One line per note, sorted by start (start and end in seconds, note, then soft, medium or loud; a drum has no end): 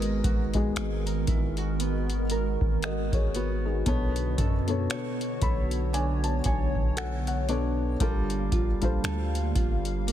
0.00 0.22 G#1 loud
0.00 0.38 G#2 medium
0.00 3.82 D#3 medium
0.00 0.38 G#3 medium
0.00 3.83 G#3 medium
0.00 3.87 G#3 medium
0.00 0.38 B3 medium
0.00 3.82 B3 medium
0.00 0.39 F#4 medium
0.00 7.96 F#4 medium
0.00 0.39 A#4 loud
0.00 3.82 A#4 medium
0.00 closed hi-hat medium
0.24 0.74 G#1 loud
0.24 1.27 F#4 medium
0.24 kick medium
0.24 closed hi-hat medium
0.54 2.21 G#2 medium
0.54 2.21 G#3 medium
0.54 2.22 B3 medium
0.54 2.22 F#4 medium
0.54 2.22 G#4 medium
0.54 kick medium
0.54 closed hi-hat medium
0.76 1.26 G#1 loud
0.76 1.06 G#4 medium
0.76 finger snap loud
0.76 closed hi-hat medium
1.06 2.30 A#4 medium
1.06 closed hi-hat medium
1.27 2.57 G#1 loud
1.27 1.58 E4 medium
1.27 kick medium
1.27 closed hi-hat medium
1.57 2.82 F#4 medium
1.57 closed hi-hat soft
1.80 3.35 B3 medium
1.80 closed hi-hat medium
2.10 closed hi-hat soft
2.30 3.99 A#4 medium
2.30 closed hi-hat medium
2.61 3.11 G#1 loud
2.61 kick medium
2.82 5.93 F#4 medium
2.82 3.13 A#4 medium
2.82 3.12 D#5 medium
2.82 finger snap loud
2.82 closed hi-hat medium
3.12 3.83 G#1 loud
3.12 3.35 G#4 medium
3.12 3.34 C#5 medium
3.12 kick medium
3.12 closed hi-hat soft
3.35 3.86 B3 medium
3.35 3.64 F#4 medium
3.35 3.64 B4 medium
3.35 closed hi-hat medium
3.65 4.15 D#4 soft
3.65 4.14 G#4 medium
3.86 4.36 B1 loud
3.86 4.51 B2 medium
3.86 7.96 D3 medium
3.86 4.52 B3 medium
3.86 8.00 B3 medium
3.86 7.97 B3 medium
3.86 4.52 D4 medium
3.86 4.52 A4 medium
3.86 7.97 C#5 medium
3.86 4.53 C#5 medium
3.86 kick loud
3.86 closed hi-hat medium
4.16 closed hi-hat soft
4.38 4.88 F#2 loud
4.38 5.41 A4 medium
4.38 kick medium
4.38 closed hi-hat medium
4.67 6.35 B2 medium
4.67 6.35 B3 medium
4.67 6.35 D4 medium
4.67 6.36 A4 medium
4.67 6.36 C#5 medium
4.67 closed hi-hat medium
4.90 6.44 C#5 medium
4.90 finger snap loud
4.90 closed hi-hat medium
5.21 closed hi-hat soft
5.41 6.41 B1 loud
5.41 6.96 A4 medium
5.41 5.90 B5 medium
5.41 kick medium
5.41 closed hi-hat medium
5.71 closed hi-hat soft
5.93 7.48 D4 medium
5.93 6.22 G#5 medium
5.93 closed hi-hat medium
6.24 6.44 A5 medium
6.24 closed hi-hat soft
6.44 7.96 B1 loud
6.44 8.12 C#5 medium
6.44 6.94 G#5 medium
6.44 kick medium
6.44 closed hi-hat medium
6.75 kick medium
6.97 8.52 A4 medium
6.97 7.25 F#5 medium
6.97 finger snap loud
6.97 closed hi-hat medium
7.27 7.47 F#5 medium
7.27 closed hi-hat soft
7.48 7.92 B2 medium
7.48 7.93 B3 medium
7.48 10.07 D4 medium
7.48 7.93 D4 medium
7.48 7.93 A4 medium
7.48 7.93 C#5 medium
7.48 closed hi-hat medium
8.00 8.50 G1 loud
8.00 10.12 D3 medium
8.00 8.65 G3 medium
8.00 10.12 G3 medium
8.00 10.12 A#3 medium
8.00 8.66 D4 medium
8.00 8.66 F4 medium
8.00 8.66 A4 medium
8.00 8.67 A#4 medium
8.00 10.12 F5 medium
8.00 kick loud
8.00 closed hi-hat medium
8.30 closed hi-hat medium
8.52 9.02 G1 medium
8.52 9.55 F4 medium
8.52 kick medium
8.52 closed hi-hat medium
8.81 10.12 G3 medium
8.81 10.12 D4 medium
8.81 10.12 F4 medium
8.81 10.12 A4 medium
8.81 10.12 C5 medium
8.81 kick medium
8.81 closed hi-hat soft
9.04 9.53 D2 loud
9.04 10.12 A4 medium
9.04 finger snap loud
9.04 closed hi-hat medium
9.35 closed hi-hat soft
9.55 10.12 G1 loud
9.55 10.12 F4 medium
9.55 kick medium
9.55 closed hi-hat medium
9.85 closed hi-hat soft
10.07 10.12 A#3 medium
10.07 closed hi-hat medium